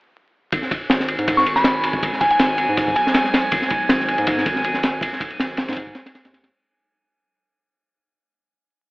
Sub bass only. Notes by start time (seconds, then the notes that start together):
0.53 G#1
0.90 G#1
1.18 G#2
1.46 G#1
2.03 G#1
2.40 G#1
2.69 G#2
3.52 G#1
3.90 G#1
4.18 G#2
4.46 G#1
5.01 G#1
5.40 G#1
5.68 G#2
6.25 D#2